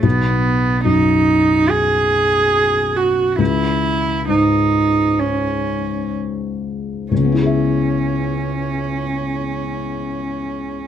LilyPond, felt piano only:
\new Staff \with { instrumentName = "Felt piano" } { \clef bass \time 4/4 \key cis \minor \tempo 4 = 65 b,,4 fis,2. | cis,4 gis,2. | <cis, cis b e' gis' e''>1 | }